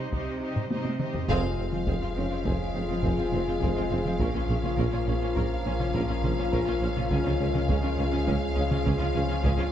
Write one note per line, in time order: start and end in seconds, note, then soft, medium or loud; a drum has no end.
0.00 1.29 G3 medium
0.00 0.12 D#4 soft
0.00 1.29 D#4 medium
0.00 0.12 G4 soft
0.00 1.29 G4 medium
0.00 0.11 C5 soft
0.00 1.29 C5 medium
0.00 0.11 D#5 soft
0.12 0.64 C3 medium
0.12 0.41 D#4 soft
0.12 0.41 G4 soft
0.12 0.40 C5 soft
0.12 0.40 D#5 soft
0.12 taiko medium
0.41 0.70 D#4 soft
0.41 0.70 G4 soft
0.41 0.69 C5 soft
0.41 0.69 D#5 soft
0.56 taiko low-mid medium
0.70 1.22 C3 medium
0.70 1.00 D#4 soft
0.70 1.00 G4 soft
0.70 0.99 C5 soft
0.70 0.99 D#5 soft
0.70 taiko high medium
0.85 taiko high medium
0.99 1.29 D#4 soft
0.99 1.29 G4 soft
0.99 1.28 C5 soft
0.99 1.28 D#5 soft
0.99 taiko mid medium
1.14 taiko low medium
1.28 4.22 F1 medium
1.28 1.43 F1 medium
1.28 1.42 F2 medium
1.28 7.07 F3 medium
1.28 7.07 F3 loud
1.28 4.16 G#3 medium
1.28 1.43 C4 medium
1.28 7.07 F4 medium
1.28 7.08 F4 medium
1.28 1.42 G#4 medium
1.28 4.16 G#4 medium
1.28 7.07 F5 medium
1.28 taiko medium
1.44 1.49 F2 soft
1.44 1.50 C4 soft
1.44 1.49 F4 soft
1.58 1.64 F1 soft
1.58 1.64 F2 medium
1.58 1.64 C4 soft
1.72 1.79 F2 soft
1.72 1.79 C4 soft
1.72 1.78 F4 soft
1.72 taiko mid medium
1.87 1.93 F1 medium
1.87 1.93 F2 medium
1.87 1.93 C4 medium
1.87 1.93 G#4 medium
1.87 taiko medium
2.02 2.08 F2 soft
2.02 2.08 C4 soft
2.02 2.08 F4 soft
2.16 2.23 F1 medium
2.16 2.23 F1 soft
2.16 2.22 F2 medium
2.16 2.22 C4 soft
2.16 2.22 C4 medium
2.16 3.88 C#4 soft
2.16 3.88 C#5 soft
2.31 2.37 F2 medium
2.31 2.37 C4 medium
2.31 2.37 F4 soft
2.45 2.51 F1 medium
2.45 2.52 F2 medium
2.45 2.51 C4 medium
2.45 2.51 G#4 medium
2.45 taiko medium
2.74 2.81 F1 soft
2.74 2.81 F2 soft
2.74 2.80 C4 soft
2.74 2.81 C4 soft
2.89 2.96 F2 soft
2.89 2.95 C4 soft
2.89 2.95 F4 soft
2.89 taiko mid soft
3.03 3.09 F1 medium
3.03 3.10 F1 medium
3.03 3.10 F2 medium
3.03 3.09 C4 medium
3.03 3.10 G#4 medium
3.03 taiko medium
3.18 3.25 F2 soft
3.18 3.25 C4 medium
3.18 3.24 F4 soft
3.33 3.38 F1 soft
3.33 3.39 F1 soft
3.33 3.39 F2 soft
3.33 3.39 C4 medium
3.33 taiko mid medium
3.47 3.54 F2 medium
3.47 3.54 C4 medium
3.47 3.53 F4 medium
3.61 3.67 F1 medium
3.61 3.68 F1 medium
3.61 3.68 F2 medium
3.61 3.68 C4 medium
3.61 3.67 G#4 medium
3.61 5.33 C5 soft
3.61 taiko medium
3.76 3.82 F2 medium
3.76 3.83 C4 medium
3.76 3.82 F4 medium
3.91 3.97 F1 medium
3.91 3.98 F1 soft
3.91 3.97 F2 soft
3.91 3.97 C4 soft
3.91 3.97 C4 medium
4.05 4.12 F2 soft
4.05 4.11 C4 medium
4.05 4.12 F4 soft
4.05 taiko mid soft
4.20 4.26 A#1 medium
4.20 7.13 A#1 medium
4.20 4.26 A#1 medium
4.20 4.26 A#2 medium
4.20 7.08 A#3 medium
4.20 9.72 C#4 medium
4.20 4.26 C#4 medium
4.20 9.72 C#4 medium
4.20 7.11 A#4 medium
4.20 4.27 A#4 medium
4.20 taiko medium
4.35 4.40 A#2 medium
4.35 4.40 C#4 soft
4.35 4.41 F4 soft
4.49 4.55 A#1 soft
4.49 4.55 A#2 medium
4.49 4.55 C#4 soft
4.63 4.69 A#2 soft
4.63 4.70 C#4 soft
4.63 4.70 F4 soft
4.63 taiko mid soft
4.78 4.84 A#1 medium
4.78 4.84 A#2 medium
4.78 4.84 C#4 medium
4.78 4.84 A#4 medium
4.78 taiko medium
4.92 4.99 A#2 medium
4.92 4.98 C#4 soft
4.92 4.99 F4 soft
5.07 5.13 A#1 soft
5.07 5.14 A#1 medium
5.07 5.14 A#2 medium
5.07 5.13 C#4 soft
5.07 5.13 C#4 medium
5.22 5.28 A#2 medium
5.22 5.27 C#4 medium
5.22 5.28 F4 medium
5.36 5.42 A#1 medium
5.36 5.43 A#1 medium
5.36 5.43 A#2 medium
5.36 5.42 C#4 medium
5.36 5.42 A#4 medium
5.36 taiko medium
5.65 5.71 A#1 medium
5.65 5.72 A#1 soft
5.65 5.72 A#2 soft
5.65 5.71 C#4 medium
5.65 5.72 C#4 medium
5.79 5.86 A#2 medium
5.79 5.86 C#4 soft
5.79 5.85 F4 medium
5.79 taiko mid soft
5.94 6.00 A#1 medium
5.94 6.01 A#1 medium
5.94 6.01 A#2 medium
5.94 6.01 C#4 medium
5.94 6.00 A#4 medium
5.94 taiko medium
6.09 6.16 A#2 medium
6.09 6.16 C#4 soft
6.09 6.15 F4 medium
6.23 6.29 A#1 soft
6.23 6.30 A#1 medium
6.23 6.30 A#2 medium
6.23 6.29 C#4 soft
6.23 6.30 C#4 medium
6.23 taiko mid medium
6.38 6.45 A#2 medium
6.38 6.45 C#4 medium
6.38 6.44 F4 medium
6.52 6.59 A#1 medium
6.52 6.59 A#2 medium
6.52 6.59 C#4 medium
6.52 6.58 A#4 medium
6.52 taiko medium
6.67 6.74 A#2 medium
6.67 6.74 C#4 medium
6.67 6.73 F4 medium
6.81 6.87 A#1 medium
6.81 6.88 A#1 soft
6.81 6.88 A#2 soft
6.81 6.88 C#4 medium
6.96 7.02 A#2 medium
6.96 7.03 C#4 medium
6.96 7.02 F4 medium
6.96 taiko mid soft
7.11 7.17 C#2 medium
7.11 9.72 C#2 medium
7.11 7.17 C#3 medium
7.11 9.72 F3 medium
7.11 9.72 G#3 medium
7.11 7.17 C#4 medium
7.11 9.72 F4 medium
7.11 7.17 G#4 medium
7.11 9.72 G#4 medium
7.11 9.72 F5 medium
7.11 taiko medium
7.25 7.31 C#3 medium
7.25 7.31 C#4 soft
7.25 7.32 F4 soft
7.39 7.46 C#2 medium
7.39 7.46 C#3 medium
7.39 7.46 C#4 soft
7.54 7.61 C#3 soft
7.54 7.60 C#4 soft
7.54 7.60 F4 medium
7.54 taiko mid medium
7.69 7.75 C#2 medium
7.69 7.75 C#3 medium
7.69 7.75 C#4 medium
7.69 7.75 G#4 medium
7.69 taiko medium
7.83 7.90 C#3 soft
7.83 7.89 C#4 soft
7.83 7.90 F4 soft
7.98 8.04 C#2 medium
7.98 8.04 C#3 medium
7.98 8.04 C#4 medium
8.13 8.19 C#3 medium
8.13 8.19 C#4 medium
8.13 8.19 F4 medium
8.27 8.33 C#2 medium
8.27 8.34 C#2 medium
8.27 8.33 C#3 medium
8.27 8.33 C#4 medium
8.27 8.33 G#4 medium
8.27 taiko medium
8.56 8.63 C#2 soft
8.56 8.63 C#2 medium
8.56 8.62 C#3 medium
8.56 8.62 C#4 medium
8.56 8.63 C#4 medium
8.71 8.77 C#3 medium
8.71 8.77 C#4 medium
8.71 8.78 F4 medium
8.71 taiko mid soft
8.86 8.92 C#2 medium
8.86 8.91 C#3 medium
8.86 8.92 C#4 medium
8.86 8.92 G#4 medium
8.86 taiko medium
8.99 9.07 C#3 medium
8.99 9.06 C#4 medium
8.99 9.06 F4 medium
9.15 9.21 C#2 medium
9.15 9.21 C#2 soft
9.15 9.21 C#3 medium
9.15 9.21 C#4 medium
9.15 9.22 C#4 medium
9.15 taiko mid medium
9.29 9.35 C#3 medium
9.29 9.35 C#4 medium
9.29 9.36 F4 medium
9.43 9.50 C#2 medium
9.43 9.49 C#3 medium
9.43 9.50 C#4 medium
9.43 9.51 G#4 medium
9.43 taiko medium
9.58 9.64 C#3 medium
9.58 9.64 C#4 medium
9.58 9.65 F4 medium